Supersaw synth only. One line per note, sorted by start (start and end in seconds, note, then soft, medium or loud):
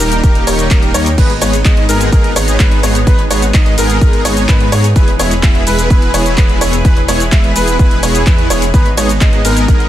0.00 0.21 G3 medium
0.00 0.21 A#3 medium
0.00 0.21 D#4 medium
0.00 0.21 G4 medium
0.00 0.21 A#4 loud
0.47 0.68 G3 medium
0.47 0.68 A#3 medium
0.47 0.68 D#4 medium
0.47 0.68 G4 medium
0.47 0.68 C#5 medium
0.71 0.92 A#3 medium
0.71 0.92 D#4 medium
0.71 0.92 A#4 loud
0.94 1.09 G3 medium
0.94 1.09 A#3 medium
0.94 1.09 D#4 medium
0.94 1.09 G4 medium
0.94 1.09 C#5 loud
1.18 1.32 G#3 medium
1.18 1.32 B3 medium
1.18 1.32 D#4 medium
1.18 1.32 G#4 medium
1.18 1.32 B4 loud
1.42 1.56 G#3 medium
1.42 1.56 B3 medium
1.42 1.56 D#4 medium
1.42 1.56 G#4 medium
1.42 1.56 C#5 medium
1.65 1.85 G#3 medium
1.65 1.85 B3 medium
1.65 1.85 D#4 medium
1.65 1.85 G#4 medium
1.65 1.85 D#5 medium
1.89 2.10 G#3 loud
1.89 2.10 B3 medium
1.89 2.10 D#4 medium
1.89 2.10 G#4 medium
1.89 2.10 A#4 loud
2.12 2.33 G#3 medium
2.12 2.33 B3 medium
2.12 2.33 D#4 medium
2.12 2.33 G#4 medium
2.12 2.33 A#4 loud
2.36 2.57 G#3 medium
2.36 2.57 B3 medium
2.36 2.57 D#4 medium
2.36 2.57 G#4 medium
2.36 2.57 C#5 medium
2.60 2.80 G#3 medium
2.60 2.80 B3 medium
2.83 2.98 G#3 medium
2.83 2.98 B3 medium
2.83 2.98 D#4 medium
2.83 2.98 G#4 medium
2.83 2.98 C#5 loud
3.07 3.21 G#3 loud
3.07 3.21 B3 medium
3.07 3.21 D#4 medium
3.07 3.21 G#4 medium
3.07 3.21 B4 loud
3.31 3.45 G#3 medium
3.31 3.45 B3 medium
3.31 3.45 D#4 medium
3.31 3.45 G#4 medium
3.31 3.45 C#5 loud
3.54 3.74 G#3 medium
3.54 3.74 B3 medium
3.54 3.74 D#4 medium
3.54 3.74 G#4 medium
3.54 3.74 D#5 medium
3.78 3.99 G#3 medium
3.78 3.99 B3 medium
3.78 3.99 D#4 medium
3.78 3.99 G#4 medium
3.78 3.99 A#4 loud
4.01 4.22 G#3 medium
4.01 4.22 B3 medium
4.01 4.22 D#4 medium
4.01 4.22 G#4 medium
4.01 4.22 A#4 loud
4.25 4.46 G#3 medium
4.25 4.46 B3 medium
4.25 4.46 D#4 medium
4.25 4.46 G#4 medium
4.25 4.46 C#5 loud
4.49 4.69 G#3 medium
4.49 4.69 B3 medium
4.49 4.69 D#4 medium
4.49 4.69 G#4 medium
4.49 4.69 B4 loud
4.72 4.87 G#3 medium
4.72 4.87 B3 medium
4.72 4.87 D#4 medium
4.72 4.87 G#4 medium
4.72 4.87 C#5 loud
4.96 5.10 G#3 loud
4.96 5.10 B3 medium
4.96 5.10 E4 medium
4.96 5.10 G#4 medium
4.96 5.10 B4 loud
5.20 5.34 G#3 medium
5.20 5.34 B3 medium
5.20 5.34 E4 medium
5.20 5.34 G#4 medium
5.20 5.34 C#5 medium
5.43 5.63 G#3 medium
5.43 5.63 B3 medium
5.43 5.63 E4 medium
5.43 5.63 G#4 medium
5.43 5.63 E5 medium
5.67 5.88 G#3 medium
5.67 5.88 B3 medium
5.67 5.88 E4 medium
5.67 5.88 G#4 medium
5.67 5.88 B4 loud
5.90 6.11 G#3 medium
5.90 6.11 B3 medium
5.90 6.11 E4 medium
5.90 6.11 G#4 medium
5.90 6.11 B4 loud
6.14 6.35 G#3 medium
6.14 6.35 B3 medium
6.14 6.35 E4 medium
6.14 6.35 G#4 medium
6.14 6.35 C#5 medium
6.38 6.58 G#3 medium
6.38 6.58 B3 medium
6.38 6.58 E4 medium
6.38 6.58 B4 loud
6.61 6.76 G#3 medium
6.61 6.76 B3 medium
6.61 6.76 E4 medium
6.61 6.76 G#4 medium
6.61 6.76 C#5 loud
6.85 6.99 G#3 loud
6.85 6.99 B3 medium
6.85 6.99 E4 medium
6.85 6.99 G#4 medium
6.85 6.99 B4 loud
7.09 7.23 G#3 medium
7.09 7.23 B3 medium
7.09 7.23 E4 medium
7.09 7.23 G#4 medium
7.09 7.23 C#5 loud
7.32 7.52 G#3 medium
7.32 7.52 B3 medium
7.32 7.52 E4 medium
7.32 7.52 G#4 medium
7.32 7.52 E5 medium
7.56 7.77 G#3 medium
7.56 7.77 B3 medium
7.56 7.77 E4 medium
7.56 7.77 G#4 medium
7.56 7.77 B4 loud
7.79 8.00 G#3 medium
7.79 8.00 B3 medium
7.79 8.00 E4 medium
7.79 8.00 G#4 medium
7.79 8.00 B4 loud
8.03 8.24 G#3 medium
8.03 8.24 B3 medium
8.03 8.24 E4 medium
8.03 8.24 G#4 medium
8.03 8.24 C#5 medium
8.27 8.47 G#3 medium
8.27 8.47 B3 medium
8.27 8.47 E4 medium
8.27 8.47 B4 medium
8.50 8.64 G#3 medium
8.50 8.64 B3 medium
8.50 8.65 E4 medium
8.50 8.64 G#4 medium
8.50 8.65 C#5 loud
8.74 8.88 G#3 loud
8.74 8.88 B3 medium
8.74 8.88 D#4 medium
8.74 8.88 G#4 medium
8.74 8.88 B4 loud
8.97 9.12 G#3 medium
8.97 9.12 B3 medium
8.97 9.12 D#4 medium
8.97 9.12 G#4 medium
8.97 9.12 C#5 loud
9.21 9.41 G#3 medium
9.21 9.41 B3 medium
9.21 9.41 D#4 medium
9.21 9.41 G#4 medium
9.21 9.41 D#5 medium
9.45 9.66 G#3 medium
9.45 9.66 B3 medium
9.45 9.66 D#4 medium
9.45 9.66 G#4 medium
9.45 9.66 A#4 loud
9.68 9.89 G#3 medium
9.68 9.89 B3 medium
9.68 9.89 D#4 medium
9.68 9.89 G#4 medium
9.68 9.89 A#4 loud